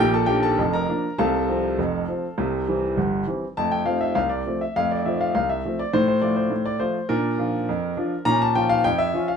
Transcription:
0.00 0.24 A#1 medium
0.00 0.24 A#2 medium
0.00 0.13 G4 medium
0.00 0.13 G5 loud
0.14 0.28 A4 medium
0.14 0.29 A5 medium
0.26 0.44 F3 soft
0.26 0.44 A#3 medium
0.26 0.45 D4 medium
0.26 0.42 G4 medium
0.26 0.42 G5 medium
0.43 0.71 A4 medium
0.43 0.73 A5 medium
0.58 0.84 F1 medium
0.58 0.84 F2 medium
0.73 1.16 A#4 medium
0.73 1.18 A#5 medium
0.89 1.05 F3 soft
0.89 1.06 A#3 soft
0.89 1.06 D4 soft
1.18 1.44 C2 medium
1.18 1.44 C3 medium
1.18 2.93 A4 medium
1.18 2.93 F5 medium
1.18 2.97 A5 medium
1.49 1.65 F3 soft
1.49 1.65 C4 medium
1.78 2.03 F1 medium
1.78 2.04 F2 medium
2.08 2.25 F3 soft
2.08 2.25 C4 soft
2.38 2.63 C2 medium
2.38 2.63 C3 medium
2.68 2.84 E3 soft
2.68 2.84 G3 soft
2.68 2.85 C4 soft
2.97 3.22 G1 medium
2.97 3.22 G2 medium
3.27 3.43 E3 soft
3.27 3.43 G3 soft
3.27 3.44 C4 soft
3.57 3.82 F2 medium
3.57 3.75 A3 soft
3.57 3.71 A5 medium
3.72 3.86 G5 medium
3.86 4.02 F3 soft
3.86 4.02 A3 soft
3.86 4.02 C4 soft
3.86 4.00 F5 medium
4.01 4.15 E5 medium
4.15 4.40 C2 medium
4.15 4.30 F5 medium
4.29 4.59 D5 medium
4.46 4.62 F3 soft
4.46 4.63 A3 soft
4.46 4.63 C4 soft
4.61 4.75 E5 medium
4.76 5.00 F2 medium
4.76 4.93 A3 soft
4.76 4.90 F5 medium
4.91 5.05 D5 medium
5.05 5.21 F3 soft
5.05 5.22 A3 soft
5.05 5.22 C4 soft
5.05 5.19 E5 medium
5.21 5.33 F5 medium
5.35 5.59 C2 medium
5.35 5.49 F5 medium
5.49 5.78 E5 medium
5.65 5.81 F3 soft
5.65 5.81 A3 soft
5.65 5.81 C4 soft
5.79 5.93 D5 medium
5.93 6.18 A2 medium
5.93 6.07 C5 medium
6.08 6.22 C5 medium
6.22 6.38 F3 soft
6.22 6.38 A3 soft
6.22 6.39 F4 soft
6.22 6.36 D5 medium
6.36 6.65 C5 medium
6.51 6.76 A2 medium
6.66 6.80 D5 medium
6.80 6.96 F3 soft
6.80 6.96 A3 soft
6.80 6.97 F4 soft
6.80 7.09 C5 medium
7.09 7.34 A#2 medium
7.09 7.27 D4 medium
7.09 8.26 A#4 medium
7.38 7.54 F3 soft
7.38 7.55 D4 soft
7.38 7.55 F4 medium
7.69 7.93 F2 medium
7.97 8.13 F3 soft
7.97 8.13 D4 soft
7.97 8.14 F4 soft
8.25 8.51 A#2 medium
8.25 8.44 C#4 medium
8.25 8.40 A#5 loud
8.42 8.56 A5 medium
8.55 8.71 F3 soft
8.55 8.72 C#4 soft
8.55 8.72 F4 medium
8.55 8.70 G5 medium
8.69 8.84 F5 medium
8.84 9.09 F2 medium
8.84 8.99 G5 loud
8.98 9.28 E5 medium
9.14 9.30 F3 soft
9.14 9.30 C#4 soft
9.14 9.30 F4 medium
9.28 9.37 F5 medium

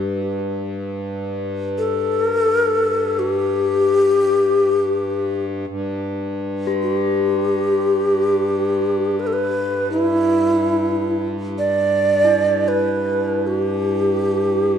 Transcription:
0.00 5.66 G2 medium
0.00 0.37 G4 medium
0.00 5.69 B4 medium
1.78 2.26 A4 loud
2.26 2.39 A#4 loud
2.39 2.53 A4 loud
2.53 2.66 A#4 loud
2.66 3.20 A4 loud
3.19 5.44 G4 medium
5.67 14.78 G2 medium
6.67 14.78 G4 medium
6.82 6.93 F#4 medium
6.93 9.21 G4 medium
9.19 9.28 B4 medium
9.27 9.34 A4 medium
9.33 9.91 B4 medium
9.91 11.28 E4 loud
11.58 12.70 D5 medium
12.25 14.78 E4 soft
12.68 13.48 B4 medium
13.47 14.78 G4 medium

